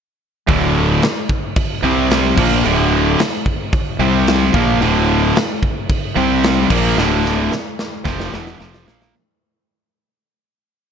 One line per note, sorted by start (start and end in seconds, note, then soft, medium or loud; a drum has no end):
0.48 0.99 D1 loud
0.48 1.02 D2 loud
0.48 1.02 A2 loud
0.48 1.02 D3 loud
0.48 kick loud
0.48 crash medium
1.02 snare loud
1.02 crash medium
1.29 kick medium
1.56 kick loud
1.56 crash medium
1.83 2.33 C2 loud
1.83 2.37 C3 medium
1.83 2.37 G3 loud
1.83 2.37 C4 medium
2.11 snare loud
2.11 crash medium
2.37 2.63 A#1 loud
2.37 2.64 A#2 loud
2.37 2.64 F3 medium
2.37 2.64 A#3 loud
2.37 kick loud
2.37 crash medium
2.64 3.15 D1 loud
2.64 3.18 D2 medium
2.64 3.18 A2 loud
2.64 3.19 D3 loud
2.64 crash medium
3.19 snare loud
3.19 crash medium
3.46 kick medium
3.73 kick loud
3.73 crash medium
3.99 4.50 C2 loud
3.99 4.53 C3 loud
3.99 4.53 G3 loud
3.99 4.54 C4 medium
4.27 snare loud
4.27 crash medium
4.53 4.79 A#1 medium
4.53 4.80 A#2 medium
4.53 4.80 F3 loud
4.53 4.81 A#3 loud
4.53 kick loud
4.81 5.31 D1 medium
4.81 5.34 D2 loud
4.81 5.35 A2 loud
4.81 5.35 D3 loud
4.81 crash medium
5.36 snare loud
5.36 crash medium
5.63 kick medium
5.90 kick loud
5.90 crash medium
6.16 6.67 C2 loud
6.16 6.69 C3 medium
6.16 6.70 G3 loud
6.16 6.70 C4 loud
6.43 snare loud
6.43 crash medium
6.70 6.95 A#1 medium
6.70 6.96 A#2 medium
6.70 6.97 F3 medium
6.70 6.97 A#3 loud
6.70 kick loud
6.70 crash loud
6.97 7.48 D1 loud
6.97 7.50 D2 loud
6.97 7.51 A2 loud
6.97 7.51 D3 loud
6.97 snare medium
7.25 snare medium
7.52 snare medium
7.79 snare medium
8.05 8.31 F1 medium
8.05 8.31 F2 medium
8.05 8.32 C3 loud
8.05 8.32 F3 medium
8.05 kick loud
8.05 snare medium
8.20 snare medium
8.31 8.58 E1 loud
8.31 8.58 E2 medium
8.31 8.58 B2 medium
8.31 8.59 E3 medium
8.31 snare loud
8.47 snare medium
8.59 8.85 F1 loud
8.59 8.85 F2 medium
8.59 8.85 C3 loud
8.59 8.86 F3 medium
8.59 snare medium
8.74 snare loud
8.86 9.12 A#1 medium
8.86 9.12 A#2 medium
8.86 9.13 F3 medium
8.86 9.13 A#3 loud
8.86 snare loud
9.02 snare loud